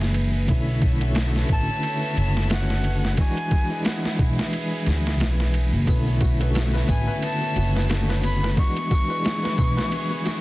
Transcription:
Already playing: F#1 E3 G#3 D4 E4 G#4 B4
0.01 snare
0.14 ride
0.47 B1 D3 A3 B3 C#4 E4 A4 C#5 E5, kick, ride
0.82 kick, ride
1.01 D3 A3 C#4 F#4, ride
1.15 snare, ride
1.36 snare
1.49 A1 A5, kick, ride
1.83 ride
2.17 F#1, ride
2.37 snare
2.50 D3 A3 C#4 F#4 F#5, snare, ride
2.70 snare
2.84 ride
3.05 snare
3.17 E3 G#3 D4 E4 F#4 G#4 G#5, kick, ride
3.37 ride
3.51 kick, ride
3.69 E3 G#3 D4
3.75 B4
3.85 F#5, snare, ride
4.05 snare
4.19 B1, kick, ride
4.39 snare
4.53 ride
4.86 D2, snare, ride
5.07 snare
5.20 B1, snare, ride
5.40 snare
5.54 ride
5.72 F#1
5.87 B1 D3 A3 B3 C#4 E4 A4 C#5 E5, kick, ride, tambourine
6.07 B3, tambourine
6.21 F#4, kick, ride, tambourine
6.40 D3 A3 C#4 F#4 B4, ride, tambourine
6.54 A3, snare, ride, tambourine
6.73 B4, snare, tambourine
6.88 A1 B3 G#5, kick, ride, tambourine
7.07 B4, tambourine
7.22 B3 A5, ride, tambourine
7.41 B3, tambourine
7.56 F#1 F#4, ride, tambourine
7.75 B4, snare, tambourine
7.88 D3 A3 C#4 F#4, snare, ride, tambourine
8.09 B4, snare, tambourine
8.23 B3 B5, ride, tambourine
8.42 B4, snare, tambourine
8.57 E3 G#3 B3 D4 E4 F#4 G#4 C#6, kick, ride, tambourine
8.76 B3, ride, tambourine
8.90 F#4, kick, ride, tambourine
9.08 E3 G#3 D4 B4, tambourine
9.13 B4
9.24 G#3, snare, ride, tambourine
9.43 B4, snare, tambourine
9.58 B1 B3, kick, ride, tambourine
9.77 B4, snare, tambourine
9.90 B3, ride, tambourine
10.10 B3, tambourine
10.25 F#4, snare, ride, tambourine

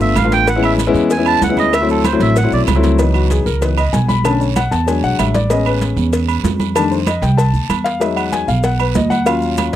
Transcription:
Already playing: A3 B3 D4 F4
0.00 G1 E5, high conga, maracas
0.15 A1 F5, cowbell, high conga, low agogo, short guiro, claves, maracas
0.24 A3 B3 D4 F4
0.32 G5, cowbell, short guiro, maracas
0.47 F#5, cowbell, high conga, low agogo, long guiro, maracas
0.56 G#3 B3 C#4 E4
0.63 E5, high conga, low agogo, claves, maracas
0.78 cowbell, high conga, low agogo, short guiro, maracas
0.87 G#3 B3 C#4 E4
0.94 E2, high conga, short guiro, maracas
1.10 G#5, cowbell, high conga, low agogo, long guiro, maracas
1.17 G#3 B3 C#4 E4
1.26 A5, high conga, low agogo, claves, maracas
1.41 D2 F#5, cowbell, high conga, low timbale, short guiro, maracas
1.49 G#3 B3 C#4 E4
1.57 D#5, high conga, low agogo, short guiro, maracas
1.73 E5, cowbell, high conga, low agogo, long guiro, claves, maracas
1.81 F#3 A3 C4 E4
1.89 A4, high conga, maracas
2.04 C5, cowbell, high conga, low agogo, short guiro, claves, maracas
2.13 F#3 A3 C4 E4
2.20 A1 E5, cowbell, high conga, short guiro, maracas
2.36 F#5, cowbell, high conga, low agogo, long guiro, maracas
2.43 F#3 A3 C4 E4
2.51 B1 D5, high conga, maracas
2.67 C#2, cowbell, high conga, low timbale, low agogo, short guiro, claves, maracas
2.75 F#3 A3 C4 E4
2.83 cowbell, high conga, short guiro, maracas
2.98 E3 F#3 B3 D#4, cowbell, high conga, low agogo, long guiro, maracas
3.14 F#4, high conga, low agogo, claves, maracas
3.30 G#4, cowbell, high conga, low agogo, short guiro, maracas
3.46 C#2 A#4, high conga, short guiro, maracas
3.61 E3 F#3 B3 D#4 B4, cowbell, high conga, low agogo, long guiro, maracas
3.77 D#5, high conga, low agogo, claves, maracas
3.93 B1 G#5, cowbell, high conga, short guiro, maracas
4.09 B5, high conga, low agogo, short guiro, maracas
4.24 D3 A3 C#4 A5, cowbell, high conga, low agogo, long guiro, claves, maracas
4.40 C#5, high conga, maracas
4.56 F#5, cowbell, high conga, low agogo, short guiro, claves, maracas
4.71 E2 A5, cowbell, high conga, short guiro, maracas
4.86 F#3 G#3 D4 G#5, cowbell, high conga, low agogo, long guiro, maracas
5.03 B1 F#5, high conga, maracas
5.18 A1 E5, cowbell, high conga, low agogo, short guiro, claves, maracas
5.34 D5, cowbell, high conga, short guiro, maracas
5.50 G#3 B3 C#4 D#5, cowbell, high conga, low agogo, long guiro, maracas
5.66 B4, high conga, low agogo, claves, maracas
5.81 cowbell, high conga, low agogo, short guiro, maracas
5.96 E2, high conga, short guiro, maracas
6.12 cowbell, high conga, low agogo, long guiro, maracas
6.28 high conga, low agogo, claves, maracas
6.44 F2, cowbell, high conga, low timbale, short guiro, maracas
6.60 high conga, low agogo, short guiro, maracas
6.75 D#3 G3 A3 D4 A5, cowbell, high conga, low agogo, long guiro, claves, maracas
6.91 C5, high conga, maracas
7.07 D#5, cowbell, high conga, low agogo, short guiro, claves, maracas
7.22 C2 G5, cowbell, high conga, short guiro, maracas
7.37 A5, cowbell, high conga, low agogo, long guiro, maracas
7.53 D2, high conga, maracas
7.69 E2, cowbell, high conga, low agogo, short guiro, claves, maracas
7.84 F5, cowbell, short guiro, maracas
8.00 F#3 G#3 D#4 E5, cowbell, high conga, low agogo, long guiro, maracas
8.16 F#5, high conga, low agogo, claves, maracas
8.32 G#5, cowbell, high conga, low agogo, short guiro, maracas
8.48 B1 F5, high conga, short guiro, maracas
8.63 F#5, cowbell, high conga, low agogo, long guiro, maracas
8.79 B4, high conga, low agogo, claves, maracas
8.95 D#2 D#5, cowbell, high conga, low timbale, short guiro, maracas
9.10 F#5, high conga, low agogo, short guiro, maracas
9.25 F#3 C#4 F4 F5, cowbell, high conga, low agogo, long guiro, claves, maracas
9.42 high conga, maracas
9.57 cowbell, high conga, low agogo, short guiro, claves, maracas

